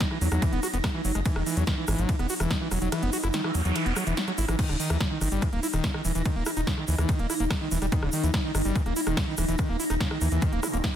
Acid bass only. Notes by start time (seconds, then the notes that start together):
0.01 D#3
0.11 E3
0.21 F#3
0.32 F#3
0.42 E3
0.53 B3
0.63 F#4
0.73 B3
0.84 E3
0.94 E3
1.05 F#3
1.15 G#3
1.26 E3
1.36 D#3
1.46 E3
1.57 F#3
1.67 D#3
1.78 E3
1.88 E3
1.98 F#3
2.09 E3
2.19 B3
2.30 F#4
2.40 E3
2.51 D#3
2.61 E3
2.71 F#3
2.82 F#3
2.92 E3
3.03 B3
3.13 F#4
3.24 E4
3.34 D#3
3.44 E3
3.55 F#3
3.65 F#3
3.76 E3
3.86 B3
3.96 F#3
4.07 E3
4.17 F#3
4.28 F#3
4.38 E4
4.48 E3
4.59 D#3
4.69 C#3
4.80 D#3
4.90 E3
5.01 C#3
5.11 D#3
5.21 D#3
5.32 G3
5.42 D#3
5.53 A#3
5.63 E4
5.73 D#3
5.94 D#3
6.05 E3
6.15 E3
6.26 D#3
6.36 A#3
6.46 E4
6.57 D#4
6.67 C#3
6.78 D#3
6.88 E3
6.99 E3
7.09 D#3
7.19 A#3
7.30 E4
7.40 A#3
7.51 D#3
7.61 D#3
7.71 E3
7.82 G3
7.92 D#3
8.03 C#3
8.13 D#3
8.23 E3
8.34 C#3
8.44 D#3
8.55 D#3
8.65 G3
8.76 D#3
8.86 A#3
8.96 E4
9.07 D#3
9.17 C#3
9.28 D#3
9.38 E3
9.48 E3
9.69 A#3
9.80 E4
9.90 D#4
10.01 C#3
10.11 D#3
10.21 E3
10.32 E3
10.42 D#3
10.53 A#3
10.63 E4
10.73 A#3
10.84 D#3